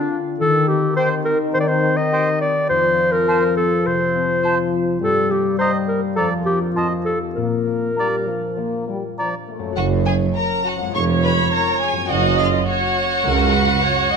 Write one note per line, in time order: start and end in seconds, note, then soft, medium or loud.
0.00 0.22 D3 medium
0.00 0.42 D3 soft
0.00 0.42 F3 soft
0.00 0.43 A#3 soft
0.00 0.11 D4 soft
0.00 0.19 D4 medium
0.00 0.42 F4 soft
0.12 0.43 D4 soft
0.39 2.66 D#3 medium
0.39 1.53 D#3 medium
0.39 0.70 A4 medium
0.68 1.25 C4 soft
0.68 0.96 G4 medium
0.97 2.11 G4 soft
0.97 1.10 C5 medium
0.97 1.14 C5 soft
0.97 1.08 G5 soft
1.25 2.40 C4 soft
1.25 1.38 A#4 medium
1.54 2.72 D#3 soft
1.54 1.62 C5 medium
1.60 1.70 D5 medium
1.68 1.98 C5 medium
1.83 2.72 D#4 soft
1.97 2.40 D#5 medium
2.12 2.72 G4 soft
2.12 2.29 C5 soft
2.12 2.22 G5 medium
2.41 2.97 C4 soft
2.41 2.69 D5 medium
2.69 5.03 F2 medium
2.69 5.02 F3 medium
2.69 3.14 C5 medium
2.98 3.56 C4 soft
3.12 3.56 A#4 medium
3.28 4.42 F4 soft
3.28 3.44 C5 soft
3.28 3.38 A5 soft
3.57 4.14 C4 soft
3.57 3.88 A4 medium
3.86 5.04 C3 soft
3.86 4.73 C5 medium
4.15 4.72 C4 soft
4.43 5.04 F4 soft
4.43 4.59 C5 soft
4.43 4.55 A5 soft
4.73 5.04 C4 soft
5.01 6.21 G2 soft
5.01 6.15 G3 medium
5.01 5.33 A4 medium
5.31 5.88 A#3 soft
5.31 5.58 G4 medium
5.59 6.20 D#4 soft
5.59 5.72 C5 medium
5.59 5.77 D#5 soft
5.59 5.69 A#5 soft
5.88 6.79 A#3 soft
5.88 6.01 A#4 medium
6.16 6.76 F2 soft
6.16 7.19 F3 soft
6.16 6.30 A4 medium
6.16 6.33 D5 soft
6.16 6.26 A#5 soft
6.46 6.79 D4 soft
6.46 6.59 G4 medium
6.46 6.79 A#4 soft
6.75 7.39 F2 soft
6.75 6.89 F4 medium
6.75 6.93 D#5 soft
6.75 6.87 A5 soft
7.05 7.39 D#4 soft
7.05 7.40 G4 soft
7.05 7.19 A4 medium
7.35 9.79 A#2 soft
7.35 7.90 A#3 soft
7.35 9.13 A#4 medium
7.67 8.26 A#3 soft
7.96 8.25 G3 soft
7.96 9.16 D4 soft
7.96 8.15 D5 soft
7.96 8.07 A#5 soft
8.27 8.57 F3 soft
8.27 8.86 A#3 soft
8.57 9.79 F3 soft
8.57 8.88 A#3 medium
8.87 9.01 G3 soft
8.87 9.46 A#3 soft
9.18 9.33 F3 soft
9.18 9.80 D4 soft
9.18 9.35 D5 soft
9.18 9.29 A#5 soft
9.48 9.77 A3 soft
9.48 9.62 A#3 soft
9.59 10.88 F#2 soft
9.63 10.90 A#3 soft
9.68 10.84 C#4 soft
9.72 10.94 F#4 soft
9.72 9.84 F#5 medium
9.77 10.26 F#1 medium
9.77 10.26 F#1 soft
9.77 10.26 F#2 medium
9.77 9.85 F#4 soft
10.05 10.15 G#4 soft
10.05 10.13 G#5 medium
10.36 10.65 A#4 soft
10.36 10.64 A#5 medium
10.65 10.73 F#4 medium
10.65 10.95 F#5 medium
10.76 12.04 F2 soft
10.81 12.06 G#3 soft
10.85 12.00 C#4 soft
10.90 11.42 F1 soft
10.90 11.43 F1 medium
10.90 12.10 G#4 soft
10.94 11.43 F2 medium
10.94 12.06 C#5 medium
10.94 11.03 C#5 medium
10.94 11.03 C#6 medium
11.22 11.31 B4 soft
11.22 11.51 B5 medium
11.50 11.80 A#4 soft
11.50 11.81 A#5 medium
11.80 11.89 G#4 medium
11.80 12.09 G#5 medium
11.92 14.17 F#2 soft
11.97 14.17 A#3 soft
12.01 14.17 C#4 soft
12.06 14.17 F#4 soft
12.10 12.58 F#1 medium
12.10 12.59 F#2 medium
12.10 12.39 F#4 medium
12.10 12.68 D#5 medium
12.10 12.39 F#5 medium
12.39 12.68 F4 medium
12.39 12.47 F5 medium
12.67 14.17 F#4 medium
12.67 13.25 C#5 medium
12.67 14.17 F#5 medium
13.25 13.74 C#2 medium
13.25 13.55 A#4 soft
13.54 13.83 B4 soft
13.83 14.12 C#5 medium
14.11 14.17 D#5 medium